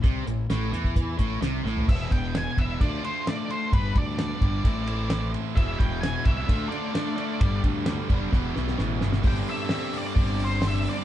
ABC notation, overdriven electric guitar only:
X:1
M:4/4
L:1/8
Q:1/4=130
K:Gmix
V:1 name="Overdriven electric guitar" clef=bass
C, A,, A,, E,2 A,, C, A,, | z8 | z8 | [E,,B,,E,] [E,,B,,E,] [E,,B,,E,] [E,,B,,E,] [D,A,D] [D,A,D] [D,A,D] [D,A,D] |
[G,,D,G,] [G,,D,G,] [G,,D,G,] [G,,D,G,] [E,,B,,E,] [E,,B,,E,] [E,,B,,E,] [E,,B,,E,] | [G,,D,G,]4 [G,,D,G,]4 |]